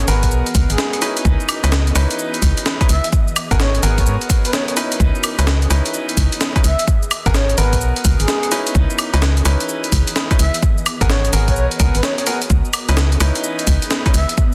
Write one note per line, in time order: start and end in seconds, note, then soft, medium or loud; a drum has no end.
0.00 8.71 B3 medium
0.00 1.23 F#4 medium
0.00 1.23 A#4 medium
0.00 8.71 D#5 medium
0.08 0.33 G#1 loud
0.08 1.00 B3 medium
0.08 1.00 F#4 medium
0.08 1.00 G#4 medium
0.08 1.00 A#4 medium
0.08 0.27 B4 medium
0.08 open hi-hat loud
0.08 shaker medium
0.23 kick medium
0.23 open hi-hat medium
0.23 shaker soft
0.31 0.42 B1 loud
0.31 shaker soft
0.46 closed hi-hat soft
0.46 shaker soft
0.55 0.66 C#2 loud
0.55 kick loud
0.55 open hi-hat loud
0.55 shaker medium
0.70 0.76 G#1 medium
0.70 1.17 G#4 medium
0.70 closed hi-hat medium
0.70 shaker soft
0.78 snare loud
0.78 shaker soft
0.93 cross-stick soft
0.93 closed hi-hat medium
0.93 shaker soft
1.02 1.60 C#4 medium
1.02 1.60 D#4 medium
1.02 1.60 E4 medium
1.02 1.60 B4 medium
1.02 open hi-hat loud
1.02 shaker medium
1.17 closed hi-hat medium
1.17 shaker soft
1.25 1.36 C#2 loud
1.25 3.11 E3 medium
1.25 3.11 G#4 medium
1.25 kick loud
1.25 shaker soft
1.40 shaker soft
1.49 open hi-hat loud
1.49 high woodblock medium
1.49 shaker medium
1.64 1.92 C#2 medium
1.64 1.69 C#4 medium
1.64 1.69 D#4 medium
1.64 1.69 E4 medium
1.64 1.69 B4 medium
1.64 closed hi-hat medium
1.64 shaker soft
1.72 cross-stick medium
1.72 snare loud
1.72 shaker soft
1.87 closed hi-hat soft
1.87 shaker soft
1.95 2.07 C#2 loud
1.95 2.77 C#4 medium
1.95 2.77 D#4 medium
1.95 2.77 E4 medium
1.95 2.77 B4 medium
1.95 cross-stick medium
1.95 open hi-hat loud
1.95 shaker medium
2.11 closed hi-hat medium
2.11 shaker soft
2.19 shaker soft
2.34 closed hi-hat soft
2.34 shaker soft
2.42 2.53 C#2 loud
2.42 kick medium
2.42 open hi-hat loud
2.42 shaker medium
2.57 closed hi-hat medium
2.57 shaker soft
2.66 snare loud
2.66 shaker soft
2.81 2.86 C#4 medium
2.81 2.86 D#4 medium
2.81 2.86 E4 medium
2.81 2.86 B4 medium
2.81 kick loud
2.81 cross-stick soft
2.81 closed hi-hat soft
2.81 shaker soft
2.89 3.00 C#2 loud
2.89 3.08 E5 medium
2.89 open hi-hat loud
2.89 shaker medium
3.04 closed hi-hat medium
3.04 shaker soft
3.13 4.98 F#4 medium
3.13 4.98 A#4 medium
3.13 kick loud
3.13 shaker soft
3.28 shaker soft
3.36 open hi-hat loud
3.36 high woodblock medium
3.36 shaker medium
3.51 3.79 G#1 medium
3.51 3.56 B3 medium
3.51 3.56 F#4 medium
3.51 3.56 G#4 medium
3.51 3.56 A#4 loud
3.51 kick loud
3.51 closed hi-hat medium
3.51 shaker soft
3.60 3.81 C#5 medium
3.60 cross-stick medium
3.60 snare loud
3.60 shaker soft
3.75 closed hi-hat soft
3.75 shaker soft
3.83 4.08 G#1 loud
3.83 4.75 B3 medium
3.83 4.75 F#4 medium
3.83 4.75 G#4 medium
3.83 4.75 A#4 medium
3.83 open hi-hat loud
3.83 shaker medium
3.98 4.03 C#5 medium
3.98 kick medium
3.98 open hi-hat medium
3.98 shaker soft
4.06 4.17 G#2 medium
4.06 4.16 C#5 medium
4.06 shaker soft
4.21 closed hi-hat soft
4.21 shaker soft
4.30 kick loud
4.30 open hi-hat loud
4.30 shaker medium
4.45 4.52 B4 medium
4.45 closed hi-hat medium
4.45 shaker soft
4.53 4.63 C#5 medium
4.53 snare loud
4.53 shaker soft
4.68 4.74 C#5 medium
4.68 cross-stick soft
4.68 closed hi-hat soft
4.68 shaker soft
4.77 5.35 C#4 medium
4.77 5.35 D#4 medium
4.77 5.35 E4 medium
4.77 5.35 B4 medium
4.77 open hi-hat loud
4.77 shaker medium
4.92 closed hi-hat medium
4.92 shaker soft
5.00 5.11 C#2 loud
5.00 6.86 E3 medium
5.00 6.86 G#4 medium
5.00 kick loud
5.00 shaker soft
5.15 shaker soft
5.24 open hi-hat loud
5.24 high woodblock medium
5.24 shaker medium
5.39 5.67 C#2 medium
5.39 5.44 C#4 medium
5.39 5.44 D#4 medium
5.39 5.44 E4 medium
5.39 5.44 B4 medium
5.39 closed hi-hat medium
5.39 shaker soft
5.47 cross-stick medium
5.47 snare loud
5.47 shaker soft
5.62 closed hi-hat soft
5.62 shaker soft
5.70 5.82 C#2 loud
5.70 6.52 C#4 medium
5.70 6.52 D#4 medium
5.70 6.52 E4 medium
5.70 6.52 B4 medium
5.70 cross-stick medium
5.70 open hi-hat loud
5.70 shaker medium
5.86 closed hi-hat medium
5.86 shaker soft
5.94 shaker soft
6.09 closed hi-hat soft
6.09 shaker soft
6.17 6.28 C#2 loud
6.17 kick medium
6.17 open hi-hat loud
6.17 shaker medium
6.32 closed hi-hat medium
6.32 shaker soft
6.41 snare loud
6.41 shaker soft
6.56 6.61 C#4 medium
6.56 6.61 D#4 medium
6.56 6.61 E4 medium
6.56 6.61 B4 medium
6.56 kick loud
6.56 cross-stick soft
6.56 closed hi-hat medium
6.56 shaker soft
6.64 6.75 C#2 loud
6.64 6.83 E5 medium
6.64 open hi-hat loud
6.64 shaker medium
6.79 closed hi-hat medium
6.79 shaker soft
6.88 8.73 F#4 medium
6.88 8.73 A#4 medium
6.88 kick loud
6.88 shaker soft
7.03 shaker soft
7.11 open hi-hat loud
7.11 high woodblock medium
7.11 shaker medium
7.26 7.54 G#1 medium
7.26 7.31 B3 loud
7.26 7.31 F#4 medium
7.26 7.31 G#4 medium
7.26 7.31 A#4 loud
7.26 kick loud
7.26 closed hi-hat medium
7.26 shaker soft
7.34 7.56 C#5 medium
7.34 cross-stick medium
7.34 snare loud
7.34 shaker soft
7.50 closed hi-hat soft
7.50 shaker soft
7.58 7.83 G#1 loud
7.58 8.50 B3 medium
7.58 8.50 F#4 medium
7.58 8.50 G#4 medium
7.58 8.50 A#4 medium
7.58 7.77 B4 medium
7.58 open hi-hat loud
7.58 shaker medium
7.73 kick medium
7.73 open hi-hat medium
7.73 shaker soft
7.81 7.92 B1 loud
7.81 shaker soft
7.96 closed hi-hat soft
7.96 shaker soft
8.05 8.16 C#2 loud
8.05 kick loud
8.05 open hi-hat loud
8.05 shaker medium
8.20 8.26 G#1 medium
8.20 8.67 G#4 medium
8.20 closed hi-hat medium
8.20 shaker soft
8.28 snare loud
8.28 shaker soft
8.43 cross-stick soft
8.43 closed hi-hat medium
8.43 shaker soft
8.52 9.10 C#4 medium
8.52 9.10 D#4 medium
8.52 9.10 E4 medium
8.52 9.10 B4 medium
8.52 open hi-hat loud
8.52 shaker medium
8.67 closed hi-hat medium
8.67 shaker soft
8.75 8.86 C#2 loud
8.75 10.61 E3 medium
8.75 10.61 B3 medium
8.75 10.61 G#4 medium
8.75 14.54 D#5 medium
8.75 kick loud
8.75 shaker soft
8.90 shaker soft
8.99 open hi-hat loud
8.99 high woodblock medium
8.99 shaker medium
9.14 9.42 C#2 medium
9.14 9.19 C#4 medium
9.14 9.19 D#4 medium
9.14 9.19 E4 medium
9.14 9.19 B4 medium
9.14 closed hi-hat medium
9.14 shaker soft
9.22 cross-stick medium
9.22 snare loud
9.22 shaker soft
9.37 closed hi-hat soft
9.37 shaker soft
9.45 9.56 C#2 loud
9.45 10.27 C#4 medium
9.45 10.27 D#4 medium
9.45 10.27 E4 medium
9.45 10.27 B4 medium
9.45 cross-stick medium
9.45 open hi-hat loud
9.45 shaker medium
9.61 closed hi-hat medium
9.61 shaker soft
9.69 shaker soft
9.84 closed hi-hat soft
9.84 shaker soft
9.92 10.03 C#2 loud
9.92 kick medium
9.92 open hi-hat loud
9.92 shaker medium
10.07 closed hi-hat medium
10.07 shaker soft
10.16 snare loud
10.16 shaker soft
10.31 10.36 C#4 medium
10.31 10.36 D#4 medium
10.31 10.36 E4 medium
10.31 10.36 B4 medium
10.31 kick loud
10.31 cross-stick soft
10.31 closed hi-hat medium
10.31 shaker soft
10.39 10.50 C#2 loud
10.39 10.58 E5 medium
10.39 open hi-hat loud
10.39 shaker medium
10.54 closed hi-hat medium
10.54 shaker soft
10.62 14.54 B3 medium
10.62 12.48 F#4 medium
10.62 12.48 A#4 medium
10.62 kick loud
10.62 shaker soft
10.78 shaker soft
10.86 open hi-hat loud
10.86 high woodblock medium
10.86 shaker medium
11.01 11.29 G#1 medium
11.01 11.06 B3 loud
11.01 11.06 F#4 medium
11.01 11.06 G#4 medium
11.01 11.06 A#4 loud
11.01 kick loud
11.01 closed hi-hat medium
11.01 shaker soft
11.09 11.31 C#5 loud
11.09 cross-stick medium
11.09 snare loud
11.09 shaker soft
11.25 closed hi-hat soft
11.25 shaker soft
11.33 11.58 G#1 loud
11.33 11.78 B3 medium
11.33 11.78 F#4 medium
11.33 11.78 G#4 medium
11.33 11.78 A#4 medium
11.33 open hi-hat loud
11.33 shaker medium
11.48 11.53 C#5 medium
11.48 kick medium
11.48 open hi-hat medium
11.48 shaker soft
11.56 11.67 B1 loud
11.56 11.66 C#5 medium
11.56 shaker soft
11.71 closed hi-hat soft
11.71 shaker soft
11.80 11.91 C#2 loud
11.80 11.94 B3 medium
11.80 11.94 F#4 medium
11.80 11.94 G#4 medium
11.80 11.94 A#4 medium
11.80 kick loud
11.80 open hi-hat loud
11.80 shaker medium
11.95 12.01 G#1 medium
11.95 12.02 B4 loud
11.95 closed hi-hat medium
11.95 shaker soft
12.03 12.13 C#5 medium
12.03 snare loud
12.03 shaker soft
12.18 12.24 C#5 medium
12.18 cross-stick soft
12.18 closed hi-hat medium
12.18 shaker soft
12.27 12.36 B3 medium
12.27 12.36 F#4 medium
12.27 12.36 G#4 medium
12.27 12.36 A#4 medium
12.27 open hi-hat loud
12.27 shaker medium
12.42 closed hi-hat medium
12.42 shaker soft
12.50 12.61 C#2 loud
12.50 14.36 E3 medium
12.50 14.36 G#4 medium
12.50 kick loud
12.50 shaker soft
12.65 shaker soft
12.73 open hi-hat loud
12.73 high woodblock medium
12.73 shaker medium
12.89 13.17 C#2 medium
12.89 12.94 C#4 medium
12.89 12.94 D#4 medium
12.89 12.94 E4 medium
12.89 12.94 B4 medium
12.89 closed hi-hat medium
12.89 shaker soft
12.97 cross-stick medium
12.97 snare loud
12.97 shaker soft
13.12 closed hi-hat soft
13.12 shaker soft
13.20 13.32 C#2 medium
13.20 14.02 C#4 medium
13.20 14.02 D#4 medium
13.20 14.02 E4 medium
13.20 14.02 B4 medium
13.20 cross-stick medium
13.20 open hi-hat loud
13.20 shaker medium
13.35 closed hi-hat medium
13.35 shaker soft
13.44 shaker soft
13.59 closed hi-hat soft
13.59 shaker soft
13.67 13.78 C#2 loud
13.67 kick medium
13.67 open hi-hat loud
13.67 shaker medium
13.82 closed hi-hat medium
13.82 shaker soft
13.91 snare loud
13.91 shaker soft
14.06 14.11 C#4 medium
14.06 14.11 D#4 medium
14.06 14.11 E4 medium
14.06 14.11 B4 medium
14.06 kick loud
14.06 cross-stick soft
14.06 closed hi-hat soft
14.06 shaker soft
14.14 14.25 C#2 medium
14.14 14.33 E5 loud
14.14 open hi-hat loud
14.14 shaker medium
14.29 closed hi-hat medium
14.29 shaker soft
14.37 14.54 F#4 medium
14.37 14.54 A#4 medium
14.37 kick loud
14.37 shaker soft